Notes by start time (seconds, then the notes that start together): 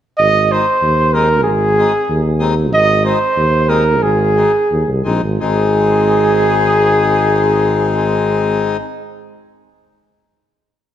0.18 G#1 D#5
0.50 G#3 C4 D#4 C5
0.82 D#2
1.13 G#3 C4 D#4 A#4
1.44 G#1 G#4
1.77 G#3 C4 D#4
2.10 D#2
2.39 G#3 C4 D#4
2.73 G#1 D#5
3.03 G#3 C4 D#4 C5
3.36 D#2
3.68 G#3 C4 D#4 A#4
4.02 G#1 G#4
4.35 G#3 C4 D#4
4.71 D#2
4.88 C2
5.04 A#1 G#3 C4 D#4
5.23 G#1
5.40 G#1 G#3 C4 D#4 G#4